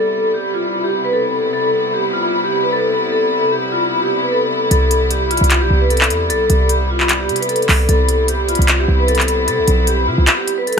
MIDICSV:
0, 0, Header, 1, 5, 480
1, 0, Start_track
1, 0, Key_signature, 0, "major"
1, 0, Tempo, 397351
1, 1852, Time_signature, 4, 2, 24, 8
1, 13039, End_track
2, 0, Start_track
2, 0, Title_t, "Vibraphone"
2, 0, Program_c, 0, 11
2, 0, Note_on_c, 0, 69, 107
2, 382, Note_off_c, 0, 69, 0
2, 413, Note_on_c, 0, 67, 76
2, 614, Note_off_c, 0, 67, 0
2, 654, Note_on_c, 0, 65, 78
2, 998, Note_off_c, 0, 65, 0
2, 1015, Note_on_c, 0, 67, 85
2, 1218, Note_off_c, 0, 67, 0
2, 1262, Note_on_c, 0, 71, 85
2, 1355, Note_off_c, 0, 71, 0
2, 1367, Note_on_c, 0, 69, 82
2, 1820, Note_off_c, 0, 69, 0
2, 1850, Note_on_c, 0, 69, 103
2, 2302, Note_off_c, 0, 69, 0
2, 2337, Note_on_c, 0, 67, 75
2, 2536, Note_off_c, 0, 67, 0
2, 2576, Note_on_c, 0, 65, 78
2, 2919, Note_off_c, 0, 65, 0
2, 2947, Note_on_c, 0, 67, 88
2, 3145, Note_off_c, 0, 67, 0
2, 3182, Note_on_c, 0, 71, 77
2, 3275, Note_off_c, 0, 71, 0
2, 3293, Note_on_c, 0, 69, 82
2, 3744, Note_off_c, 0, 69, 0
2, 3771, Note_on_c, 0, 69, 103
2, 4222, Note_off_c, 0, 69, 0
2, 4250, Note_on_c, 0, 67, 75
2, 4452, Note_off_c, 0, 67, 0
2, 4493, Note_on_c, 0, 65, 76
2, 4837, Note_off_c, 0, 65, 0
2, 4855, Note_on_c, 0, 67, 82
2, 5058, Note_off_c, 0, 67, 0
2, 5100, Note_on_c, 0, 71, 82
2, 5194, Note_off_c, 0, 71, 0
2, 5218, Note_on_c, 0, 69, 81
2, 5666, Note_off_c, 0, 69, 0
2, 5693, Note_on_c, 0, 69, 97
2, 6143, Note_off_c, 0, 69, 0
2, 6172, Note_on_c, 0, 67, 74
2, 6373, Note_off_c, 0, 67, 0
2, 6411, Note_on_c, 0, 65, 87
2, 6757, Note_off_c, 0, 65, 0
2, 6781, Note_on_c, 0, 67, 85
2, 6981, Note_off_c, 0, 67, 0
2, 7018, Note_on_c, 0, 71, 76
2, 7113, Note_off_c, 0, 71, 0
2, 7128, Note_on_c, 0, 69, 78
2, 7581, Note_off_c, 0, 69, 0
2, 7606, Note_on_c, 0, 69, 108
2, 8060, Note_off_c, 0, 69, 0
2, 8091, Note_on_c, 0, 67, 77
2, 8293, Note_off_c, 0, 67, 0
2, 8335, Note_on_c, 0, 65, 82
2, 8679, Note_off_c, 0, 65, 0
2, 8695, Note_on_c, 0, 67, 85
2, 8898, Note_off_c, 0, 67, 0
2, 8941, Note_on_c, 0, 71, 85
2, 9035, Note_off_c, 0, 71, 0
2, 9045, Note_on_c, 0, 69, 79
2, 9499, Note_off_c, 0, 69, 0
2, 9529, Note_on_c, 0, 69, 103
2, 9981, Note_off_c, 0, 69, 0
2, 10017, Note_on_c, 0, 67, 77
2, 10216, Note_off_c, 0, 67, 0
2, 10257, Note_on_c, 0, 65, 82
2, 10600, Note_off_c, 0, 65, 0
2, 10628, Note_on_c, 0, 67, 88
2, 10825, Note_off_c, 0, 67, 0
2, 10862, Note_on_c, 0, 71, 79
2, 10955, Note_off_c, 0, 71, 0
2, 10974, Note_on_c, 0, 69, 83
2, 11424, Note_off_c, 0, 69, 0
2, 11451, Note_on_c, 0, 69, 104
2, 11903, Note_off_c, 0, 69, 0
2, 11931, Note_on_c, 0, 67, 75
2, 12133, Note_off_c, 0, 67, 0
2, 12172, Note_on_c, 0, 65, 75
2, 12517, Note_off_c, 0, 65, 0
2, 12534, Note_on_c, 0, 67, 85
2, 12737, Note_off_c, 0, 67, 0
2, 12778, Note_on_c, 0, 71, 87
2, 12873, Note_off_c, 0, 71, 0
2, 12895, Note_on_c, 0, 69, 82
2, 13039, Note_off_c, 0, 69, 0
2, 13039, End_track
3, 0, Start_track
3, 0, Title_t, "String section"
3, 0, Program_c, 1, 48
3, 0, Note_on_c, 1, 48, 86
3, 0, Note_on_c, 1, 55, 77
3, 0, Note_on_c, 1, 59, 78
3, 0, Note_on_c, 1, 64, 95
3, 1814, Note_off_c, 1, 55, 0
3, 1852, Note_on_c, 1, 55, 80
3, 9484, Note_off_c, 1, 64, 0
3, 9485, Note_off_c, 1, 48, 0
3, 9485, Note_off_c, 1, 59, 0
3, 9529, Note_on_c, 1, 59, 77
3, 9530, Note_on_c, 1, 60, 83
3, 9530, Note_on_c, 1, 64, 92
3, 13039, Note_off_c, 1, 55, 0
3, 13039, Note_off_c, 1, 59, 0
3, 13039, Note_off_c, 1, 60, 0
3, 13039, Note_off_c, 1, 64, 0
3, 13039, End_track
4, 0, Start_track
4, 0, Title_t, "808-style bass"
4, 0, Program_c, 2, 38
4, 5692, Note_on_c, 2, 36, 108
4, 6505, Note_off_c, 2, 36, 0
4, 6539, Note_on_c, 2, 36, 111
4, 6780, Note_on_c, 2, 35, 98
4, 6798, Note_off_c, 2, 36, 0
4, 6886, Note_off_c, 2, 35, 0
4, 6892, Note_on_c, 2, 36, 105
4, 7373, Note_on_c, 2, 40, 95
4, 7391, Note_off_c, 2, 36, 0
4, 7611, Note_on_c, 2, 36, 96
4, 7629, Note_off_c, 2, 40, 0
4, 7839, Note_off_c, 2, 36, 0
4, 7851, Note_on_c, 2, 36, 110
4, 8810, Note_on_c, 2, 48, 99
4, 8828, Note_off_c, 2, 36, 0
4, 9267, Note_off_c, 2, 48, 0
4, 9289, Note_on_c, 2, 36, 103
4, 9521, Note_off_c, 2, 36, 0
4, 9529, Note_on_c, 2, 36, 113
4, 10344, Note_off_c, 2, 36, 0
4, 10378, Note_on_c, 2, 36, 106
4, 10717, Note_off_c, 2, 36, 0
4, 10731, Note_on_c, 2, 36, 106
4, 11450, Note_on_c, 2, 48, 99
4, 11468, Note_off_c, 2, 36, 0
4, 11579, Note_on_c, 2, 36, 100
4, 11597, Note_off_c, 2, 48, 0
4, 11686, Note_off_c, 2, 36, 0
4, 11691, Note_on_c, 2, 35, 112
4, 12171, Note_on_c, 2, 48, 102
4, 12189, Note_off_c, 2, 35, 0
4, 12292, Note_off_c, 2, 48, 0
4, 12299, Note_on_c, 2, 36, 110
4, 12412, Note_off_c, 2, 36, 0
4, 13039, End_track
5, 0, Start_track
5, 0, Title_t, "Drums"
5, 5691, Note_on_c, 9, 42, 87
5, 5812, Note_off_c, 9, 42, 0
5, 5930, Note_on_c, 9, 42, 80
5, 6051, Note_off_c, 9, 42, 0
5, 6168, Note_on_c, 9, 42, 76
5, 6288, Note_off_c, 9, 42, 0
5, 6412, Note_on_c, 9, 42, 61
5, 6492, Note_off_c, 9, 42, 0
5, 6492, Note_on_c, 9, 42, 64
5, 6572, Note_off_c, 9, 42, 0
5, 6572, Note_on_c, 9, 42, 58
5, 6649, Note_off_c, 9, 42, 0
5, 6649, Note_on_c, 9, 42, 85
5, 6652, Note_on_c, 9, 39, 118
5, 6770, Note_off_c, 9, 42, 0
5, 6772, Note_off_c, 9, 39, 0
5, 7133, Note_on_c, 9, 42, 56
5, 7212, Note_off_c, 9, 42, 0
5, 7212, Note_on_c, 9, 42, 56
5, 7259, Note_on_c, 9, 39, 100
5, 7292, Note_off_c, 9, 42, 0
5, 7292, Note_on_c, 9, 42, 54
5, 7374, Note_off_c, 9, 42, 0
5, 7374, Note_on_c, 9, 42, 87
5, 7380, Note_off_c, 9, 39, 0
5, 7494, Note_off_c, 9, 42, 0
5, 7610, Note_on_c, 9, 42, 89
5, 7731, Note_off_c, 9, 42, 0
5, 7848, Note_on_c, 9, 42, 88
5, 7969, Note_off_c, 9, 42, 0
5, 8086, Note_on_c, 9, 42, 77
5, 8207, Note_off_c, 9, 42, 0
5, 8458, Note_on_c, 9, 39, 64
5, 8567, Note_on_c, 9, 42, 86
5, 8570, Note_off_c, 9, 39, 0
5, 8570, Note_on_c, 9, 39, 116
5, 8688, Note_off_c, 9, 42, 0
5, 8690, Note_off_c, 9, 39, 0
5, 8810, Note_on_c, 9, 42, 61
5, 8890, Note_off_c, 9, 42, 0
5, 8890, Note_on_c, 9, 42, 61
5, 8970, Note_off_c, 9, 42, 0
5, 8970, Note_on_c, 9, 42, 60
5, 9050, Note_off_c, 9, 42, 0
5, 9050, Note_on_c, 9, 42, 66
5, 9130, Note_off_c, 9, 42, 0
5, 9130, Note_on_c, 9, 42, 55
5, 9210, Note_off_c, 9, 42, 0
5, 9210, Note_on_c, 9, 42, 40
5, 9290, Note_on_c, 9, 39, 90
5, 9292, Note_on_c, 9, 46, 86
5, 9331, Note_off_c, 9, 42, 0
5, 9411, Note_off_c, 9, 39, 0
5, 9413, Note_off_c, 9, 46, 0
5, 9529, Note_on_c, 9, 42, 85
5, 9650, Note_off_c, 9, 42, 0
5, 9768, Note_on_c, 9, 42, 82
5, 9888, Note_off_c, 9, 42, 0
5, 10005, Note_on_c, 9, 42, 78
5, 10126, Note_off_c, 9, 42, 0
5, 10250, Note_on_c, 9, 42, 61
5, 10331, Note_off_c, 9, 42, 0
5, 10331, Note_on_c, 9, 42, 63
5, 10410, Note_off_c, 9, 42, 0
5, 10410, Note_on_c, 9, 42, 61
5, 10488, Note_off_c, 9, 42, 0
5, 10488, Note_on_c, 9, 42, 82
5, 10490, Note_on_c, 9, 39, 116
5, 10608, Note_off_c, 9, 42, 0
5, 10611, Note_off_c, 9, 39, 0
5, 10972, Note_on_c, 9, 42, 57
5, 11051, Note_off_c, 9, 42, 0
5, 11051, Note_on_c, 9, 42, 57
5, 11097, Note_on_c, 9, 39, 97
5, 11130, Note_off_c, 9, 42, 0
5, 11130, Note_on_c, 9, 42, 54
5, 11212, Note_off_c, 9, 42, 0
5, 11212, Note_on_c, 9, 42, 87
5, 11218, Note_off_c, 9, 39, 0
5, 11333, Note_off_c, 9, 42, 0
5, 11450, Note_on_c, 9, 42, 85
5, 11571, Note_off_c, 9, 42, 0
5, 11688, Note_on_c, 9, 42, 89
5, 11809, Note_off_c, 9, 42, 0
5, 11926, Note_on_c, 9, 42, 76
5, 12047, Note_off_c, 9, 42, 0
5, 12408, Note_on_c, 9, 42, 82
5, 12411, Note_on_c, 9, 39, 119
5, 12529, Note_off_c, 9, 42, 0
5, 12532, Note_off_c, 9, 39, 0
5, 12654, Note_on_c, 9, 42, 70
5, 12775, Note_off_c, 9, 42, 0
5, 12892, Note_on_c, 9, 42, 42
5, 12956, Note_off_c, 9, 42, 0
5, 12956, Note_on_c, 9, 42, 49
5, 13039, Note_off_c, 9, 42, 0
5, 13039, End_track
0, 0, End_of_file